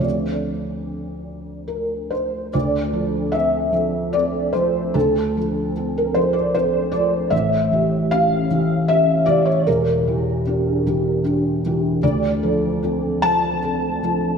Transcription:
\new Staff \with { instrumentName = "Felt piano" } { \time 3/4 \key d \minor \tempo 4 = 76 << { d''2 bes'8 c''8 | d''4 e''4 d''8 c''8 | a'4~ a'16 bes'16 c''16 d''16 c''8 d''8 | e''4 f''4 e''8 d''16 cis''16 |
bes'4. r4. | d''4. a''4. | } \\ { <d, f c' a'>2. | d,8 <f a'>8 <c' a'>8 <f a'>8 <c' a'>8 <f a'>8 | d,8 <f a'>8 <c' a'>8 <f a'>8 <c' a'>8 <f a'>8 | <a,, a,>8 <e g'>8 <cis' g'>8 <e g'>8 <cis' g'>8 <e g'>8 |
<e,, e,>8 <e g'>8 <d' g'>8 <e g'>8 <d' g'>8 <e g'>8 | d,8 <f a'>8 <c' a'>8 <f a'>8 <c' a'>8 <f a'>8 | } >> }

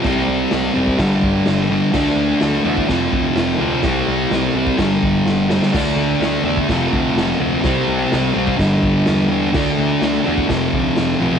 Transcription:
<<
  \new Staff \with { instrumentName = "Distorted electric guitar" } { \clef bass \time 4/4 \key d \dorian \tempo 4 = 126 <c g c'>4. <c g c'>8 <g, d g>4. <g, d g>8 | <d a d'>4. <d a d'>8 <f, c f>4. <f, c f>8 | <c g c'>4. <c g c'>8 <g, d g>4. <g, d g>8 | <d a d'>4. <d a d'>8 <f, c f>4. <f, c f>8 |
<c g c'>4. <c g c'>8 <g, d g>4. <g, d g>8 | <d a d'>4. <d a d'>8 <f, c f>4. <f, c f>8 | }
  \new Staff \with { instrumentName = "Picked electric bass" } { \clef bass \time 4/4 \key d \dorian c,8 c,8 c,8 f,,8 g,,8 g,,8 g,,4 | d,8 d,8 d,8 e,8 f,,8 d,8 f,,8 d,8 | c,8 c,8 c,8 c,8 g,,8 g,,8 g,,4 | d,8 d,8 d,8 e,8 f,,8 d,8 f,,8 d,8 |
c,8 c,8 c,8 c,8 g,,8 g,,8 e,4 | d,8 d,8 d,8 e,8 f,,8 d,8 f,,8 b,,8 | }
  \new DrumStaff \with { instrumentName = "Drums" } \drummode { \time 4/4 <hho bd sn>4 <hho sn>8. bd16 <hho bd sn>8 bd8 <hho sn>4 | <cymc bd sn>4 <hho sn>8. bd16 <hho bd sn>8 bd8 <hho sn>4 | <hho bd sn>4 <hho sn>8. bd16 <hho bd sn>8 bd8 sn8 sn16 sn16 | <cymc bd sn>4 <hho sn>8. bd16 <hho bd sn>8 bd8 <hho sn>4 |
<hho bd sn>4 <hho sn>8. bd16 <hho bd sn>8 bd8 <hho sn>4 | <cymc bd sn>4 <hho sn>8. bd16 <hho bd sn>8 bd8 <hho sn>4 | }
>>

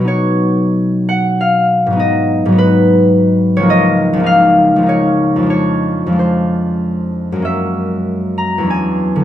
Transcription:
<<
  \new Staff \with { instrumentName = "Harp" } { \time 3/4 \key b \lydian \tempo 4 = 98 <cis'' dis''>4. fis''8 eis''4 | dis''4 b'4.~ b'16 cis''16 | dis''4 eis''4 cis''4 | cis''4 c''2 |
\key fis \mixolydian e''4. ais''8 gis''4 | }
  \new Staff \with { instrumentName = "Harp" } { \clef bass \time 3/4 \key b \lydian <b, fis b dis' fis'>2. | <gis, fis b dis'>4 <gis, fis b dis'>2 | <cis, eis ais dis'>4 <cis, eis ais dis'>4 <cis, eis ais dis'>4 | <f, f aes d'>4 <f, f aes d'>2 |
\key fis \mixolydian <fis, gis ais cis'>2 <e, fis b d'>4 | }
>>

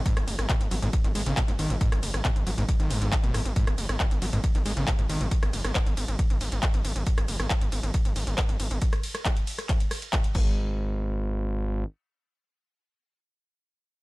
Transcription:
<<
  \new Staff \with { instrumentName = "Acid bass" } { \clef bass \time 4/4 \key gis \minor \tempo 4 = 137 gis,16 r8. b,16 r16 fis16 gis,16 r16 dis16 gis16 cis16 b,16 gis,16 dis16 fis,16 | gis,16 r8. b,16 r16 fis16 gis,16 r16 dis16 gis,8 b,16 b,16 gis,16 r16 | gis,16 r8. b,16 r16 fis16 gis,16 r16 dis16 gis16 cis16 b,16 gis,16 dis16 fis,16 | r1 |
r1 | r1 | r1 | r1 | }
  \new Staff \with { instrumentName = "Analog synth bass" } { \clef bass \time 4/4 \key gis \minor r16 gis,,16 fis,,16 gis,,16 r16 gis,,16 gis,,16 gis,,16 r16 gis,,16 gis,,16 gis,,16 r16 gis,,16 gis,,16 gis,,16 | r16 gis,,16 fis,,16 gis,,16 r16 gis,,16 gis,,16 gis,,16 r16 gis,,16 gis,,16 gis,,16 r16 fis,,16 gis,,16 gis,,16 | r16 gis,,16 fis,,16 gis,,16 r16 gis,,16 gis,,16 gis,,16 r16 gis,,16 gis,,16 gis,,16 r16 gis,,16 gis,,16 gis,,16 | r16 gis,,16 fis,,16 gis,,16 r16 gis,,16 gis,,16 gis,,16 r16 gis,,16 gis,,16 gis,,16 r16 gis,,16 gis,,16 gis,,16 |
r16 gis,,16 fis,,16 gis,,16 r16 gis,,16 gis,,16 gis,,16 r16 gis,,16 gis,,16 gis,,16 r16 gis,,16 gis,,16 gis,,16 | r2. r8 gis,,8~ | gis,,2. r4 | r1 | }
  \new DrumStaff \with { instrumentName = "Drums" } \drummode { \time 4/4 <hh bd>16 <hh ss>16 <hho cymr>16 <hh ss>16 <hc hh bd>16 hh16 <hho cymr>16 hh16 <hh bd>16 hh16 <hho cymr>16 hh16 <hc hh bd>16 hh16 <hho cymr>16 hh16 | <hh bd>16 <hh ss>16 <hho cymr>16 <hh ss>16 <hc hh bd>16 hh16 <hho cymr>16 hh16 <hh bd>16 hh16 <hho cymr>16 hh16 <hc hh bd>16 hh16 <hho cymr ss>16 hh16 | <hh bd>16 <hh ss>16 <hho cymr>16 <hh ss>16 <hc hh bd>16 hh16 <hho cymr>16 hh16 <hh bd>16 hh16 <hho cymr>16 hh16 <hc hh bd>16 hh16 <hho cymr>16 hh16 | <hh bd>16 <hh ss>16 <hho cymr>16 <hh ss>16 <hc hh bd>16 hh16 <hho cymr>16 hh16 <hh bd>16 hh16 <hho cymr>16 hh16 <hc hh bd>16 hh16 <hho cymr>16 hh16 |
<hh bd>16 <hh ss>16 <hho cymr>16 <hh ss>16 <hc hh bd>16 hh16 <hho cymr>16 hh16 <hh bd>16 hh16 <hho cymr>16 hh16 <hc hh bd>16 hh16 <hho cymr>16 hh16 | <hh bd>16 <hh ss>16 <hho cymr>16 <hh ss>16 <hc hh bd>16 hh16 <hho cymr>16 <hh ss>16 <hc hh bd>16 hh16 <hho cymr ss>16 hh16 <hc hh bd>16 hh16 <cymc bd>8 | r4 r4 r4 r4 | r4 r4 r4 r4 | }
>>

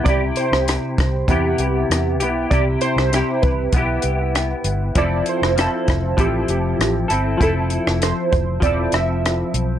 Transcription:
<<
  \new Staff \with { instrumentName = "Synth keys" } { \time 4/4 \key c \major \tempo 4 = 98 d''8 c''4. g'8 g'4 r8 | d''8 c''4 b'2 r8 | d''8 c''4. g'8 g'4 r8 | a'4 c''8 c''8 d''8 e''4 r8 | }
  \new Staff \with { instrumentName = "Clean electric guitar" } { \time 4/4 \key c \major <c e' g'>2 <c b e' g'>4. <b e' g'>8 | <c e' g'>4 <c e' g'>4 <b e' g'>2 | <f c' e' a'>4 <f c' e' a'>4 <f c' e' a'>4. <c' e' a'>8 | <f c' e' a'>2 <f c' e' a'>2 | }
  \new Staff \with { instrumentName = "Fingered electric bass" } { \clef bass \time 4/4 \key c \major c,8 r16 c,8 r16 c,8 e,8 c,8 e,8 b,,8 | c,8 r16 c,8 r16 c,8 b,,8 c,4 g,,8 | f,,8 r16 f,,8 r16 f,,8 a,,8 f,,8 a,,8 g,,8 | f,,8. f,,8 r16 f,,8 e,,8 f,,4 b,,8 | }
  \new DrumStaff \with { instrumentName = "Drums" } \drummode { \time 4/4 <hh bd>8 hh16 ss16 <hh ss>8 <hh bd ss>8 <hh bd>8 hh8 <hh ss>8 hh8 | <hh bd>8 hh16 ss16 <hh ss>8 <hh bd>8 <hh bd>8 hh8 <hh ss>8 hh8 | <hh bd>8 hh16 ss16 <hh ss>8 <hh bd ss>8 <hh bd>8 hh8 <hh ss>8 hh8 | <hh bd>8 hh16 ss16 <hh ss>8 <hh bd>8 <hh bd>8 <hh ss>8 <hh ss>8 hh8 | }
>>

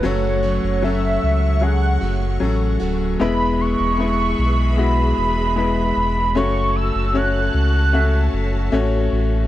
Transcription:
<<
  \new Staff \with { instrumentName = "Soft synth lead" } { \time 4/4 \key fis \minor \tempo 4 = 76 cis''4 e''4 fis''4 r4 | b''8 cis'''4. b''8 b''8 b''4 | cis'''8 e'''8 fis'''2 r4 | }
  \new Staff \with { instrumentName = "String section" } { \time 4/4 \key fis \minor <a cis'' fis'' cis'''>1 | <gis' b' e'' b''>1 | <fis' a' cis'' a''>1 | }
  \new Staff \with { instrumentName = "Upright piano" } { \time 4/4 \key fis \minor <fis cis' a'>4 <fis cis' a'>4 <fis cis' gis'>4 <fis cis' a'>4 | <gis b e' b'>4 <gis b e' b'>4 <gis b e' fis'>4 <gis b e' b'>4 | <a cis' fis' cis''>4 <a cis' fis' cis''>4 <a cis' fis' e''>4 <a cis' fis' cis''>4 | }
  \new Staff \with { instrumentName = "Upright piano" } { \clef bass \time 4/4 \key fis \minor cis4. r2 r8 | b,4. r2 r8 | cis4. r2 r8 | }
  \new Staff \with { instrumentName = "Steel-string acoustic guitar" } { \time 4/4 \key fis \minor <fis, cis fis a cis' fis'>8 <fis a cis' fis'>8 <fis a cis' fis'>4. <fis a cis' fis'>8 <fis a cis' fis'>8 <fis a cis' fis'>8 | r1 | r1 | }
  \new Staff \with { instrumentName = "Sub bass" } { \clef bass \time 4/4 \key fis \minor fis,,8. fis,,8. cis,4 fis,,8 a,,8 d,,8 | e,,8. e,,8. b,,4 e,,4 e,,8 | fis,,8. fis,,8. cis,4 fis,,8 a,,8 a,,8 | }
>>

